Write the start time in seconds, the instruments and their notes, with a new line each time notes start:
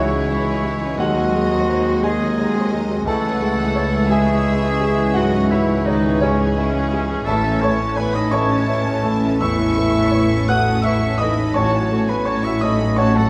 Already playing: grand piano C#2 G#3 C#4 D#4 E4 F#4 G#4 C#5 D#5 E5 F#5, cello section C#2, double bass section C#2, french horn section E3, bassoon G#3, violin section E4 C#5, oboe E4, clarinet E4, flute section C#6
0.09 viola section E3 G#3, violin section C#4 G#4
0.27 viola section E3 G#3, violin section E4, grand piano E5
0.45 viola section E3 G#3, violin section C#4 G#4
0.63 viola section E3 G#3, violin section E4, grand piano G#4
0.80 viola section E3 G#3, violin section C#4 G#4
0.97 grand piano D#2 F#5, cello section D#2, double bass section D#2, viola section F#3 G#3, french horn section F#3, violin section D#4 D#5, oboe F#4, clarinet F#4, flute section C6
1.01 grand piano F#4 D#5
1.16 viola section F#3 G#3, violin section C4 F#4
1.33 viola section F#3 G#3, grand piano G#3, violin section D#4
1.50 viola section F#3 G#3, violin section C4 F#4
1.68 viola section F#3 G#3, violin section D#4, grand piano C5
1.85 viola section F#3 G#3, violin section C4 F#4
2.02 viola section F#3 G#3, french horn section G#3, violin section D#4 D#5, clarinet G#4, oboe G#4, grand piano G#4 D#5 G#5
2.19 viola section F#3 G#3, violin section C4 F#4
2.37 viola section F#3 G#3, violin section D#4, grand piano D#5
2.54 viola section F#3 G#3, violin section C4 F#4
2.72 viola section F#3 G#3, violin section D#4, grand piano G#4
2.88 viola section F#3 G#3, violin section C4 F#4
3.05 grand piano C#2 A4 A5, cello section C#2, double bass section C#2, bassoon E3, viola section G#3, french horn section A3, violin section E4 F#5, clarinet A4, oboe A4, flute section C#6
3.23 viola section E3, violin section C#4 G#4
3.41 grand piano G#3, viola section G#3, violin section E4
3.58 viola section E3, violin section C#4 G#4
3.75 viola section G#3, violin section E4, grand piano C#5
3.92 viola section E3, violin section C#4 G#4
4.09 viola section G#3, french horn section G#3, violin section E4 E5, grand piano G#4 E5 G#5, clarinet G#4, oboe G#4
4.27 viola section E3, violin section C#4 G#4
4.44 viola section G#3, grand piano E5
4.49 violin section E4
4.62 viola section E3, violin section G#4
4.66 violin section C#4
4.79 viola section G#3, grand piano G#4
4.85 violin section E4
4.97 viola section E3
5.01 violin section C#4 G#4
5.14 grand piano G#2 F#4 F#5, french horn section F#3, viola section G#3, oboe F#4, clarinet F#4, violin section D#5
5.18 violin section E4
5.33 viola section E3, violin section C#4 G#4
5.50 french horn section E3, viola section G#3, grand piano G#3 E4 E5, oboe E4, clarinet E4, violin section E4 C#5
5.69 viola section E3, violin section C#4 G#4
5.86 french horn section D#3, viola section G#3, oboe D#4, grand piano D#4 C#5 D#5, clarinet D#4, violin section E4 B4
6.04 viola section E3, violin section C#4 G#4
6.21 french horn section C#3, viola section G#3, oboe C#4, grand piano C#4 G#4 C#5, clarinet C#4, violin section E4 G#4
6.39 viola section E3, violin section C#4 G#4
6.57 viola section G#3, violin section E4, grand piano E5
6.74 viola section E3, violin section C#4 G#4
6.92 viola section G#3, violin section E4, grand piano G#4
7.08 viola section E3, violin section C#4 G#4
7.25 double bass section A1, grand piano A1 A4 E5 A5, cello section A2, bassoon E3, french horn section A3, viola section A3, violin section E4 E5, oboe A4, clarinet A4, flute section C#6
7.44 viola section E3 C#4, violin section C#4 A4
7.61 bassoon E3, viola section A3, grand piano A3 C#5 C#6, french horn section C#4, violin section E4 A5, oboe C#5, clarinet C#5, flute section C#6
7.79 viola section E3 C#4, violin section C#4 A4
7.95 bassoon E3, viola section A3, french horn section B3, violin section E4 G#5, oboe B4, clarinet B4, grand piano B4 C#5 B5, flute section C#6
8.13 viola section E3 C#4, violin section C#4 A4 B5, french horn section D#4, oboe D#5, clarinet D#5, grand piano D#6
8.17 grand piano D#5
8.29 bassoon E3, viola section A3, french horn section C#4, grand piano A4 C#5 A5 C#6, oboe C#5, violin section A5, flute section C#6
8.34 violin section E4, clarinet C#5
8.49 viola section E3 C#4, violin section C#4 A4
8.67 bassoon E3, viola section A3, violin section E4, grand piano E5, flute section C#6
8.86 viola section E3 C#4, violin section C#4 A4
9.03 bassoon E3, viola section A3, grand piano A4, flute section C#6
9.07 violin section E4
9.23 viola section E3 C#4, violin section C#4 A4
9.40 grand piano E2 E5 C#6 E6, bassoon E3, viola section A3, french horn section E4, oboe E5, clarinet E5, flute section C#6, violin section C#6
9.45 violin section E4
9.60 viola section E3 C#4, violin section C#4 A4
9.75 bassoon E3, grand piano A3, viola section A3, flute section C#6
9.82 violin section E4
9.96 viola section E3 C#4
10.00 violin section C#4 A4
10.11 bassoon E3, viola section A3, grand piano C#5, flute section C#6
10.18 violin section E4
10.32 viola section E3 C#4, violin section C#4 A4
10.48 bassoon E3, viola section A3, violin section E4 D#6, french horn section F#4, grand piano A4 F#5 F#6, oboe F#5, clarinet F#5, flute section C#6
10.67 viola section E3 C#4, violin section C#4 A4
10.82 viola section A3, french horn section E4, grand piano E5 E6, oboe E5, violin section C#6, flute section C#6
10.86 bassoon E3, violin section E4, clarinet E5
11.03 viola section E3 C#4, violin section C#4 A4
11.18 bassoon E3, viola section A3, french horn section D#4, grand piano A4 D#5 D#6, oboe D#5, clarinet D#5, violin section B5
11.22 violin section E4, flute section C#6
11.38 viola section E3 C#4, violin section C#4 A4
11.54 double bass section A1, grand piano A1 C#5 A5 C#6, cello section A2, bassoon F#3, viola section A3, french horn section C#4, violin section C#4 A5, oboe C#5, clarinet C#5
11.59 violin section F#4, flute section C#6
11.74 viola section F#3, violin section C#4 F#4
11.91 bassoon F#3, grand piano A3, viola section A3, violin section C#4 F#4, flute section C#6
12.07 viola section F#3, french horn section B3, violin section F#4 G#5, oboe B4, clarinet B4, grand piano B4 B5
12.11 violin section C#4
12.25 bassoon F#3, viola section A3, french horn section C#4, grand piano C#5 C#6, clarinet C#5, oboe C#5, violin section A5, flute section C#6
12.30 violin section C#4 F#4
12.43 viola section F#3, french horn section E4, clarinet E5, oboe E5, grand piano E5 E6, violin section C#6
12.47 violin section C#4 F#4
12.60 bassoon F#3, viola section A3, violin section C#4 F#4 B5, french horn section D#4, grand piano A4 D#5 D#6, clarinet D#5, oboe D#5, flute section C#6
12.81 viola section F#3, violin section C#4 F#4
12.96 bassoon F#3, viola section A3, violin section C#4 F#4 A5, french horn section C#4, grand piano C#5 F#5 C#6, clarinet C#5, oboe C#5, flute section C#6
13.15 viola section F#3, french horn section A3, violin section C#4 F#4 F#5, grand piano A4 A5, clarinet A4, oboe A4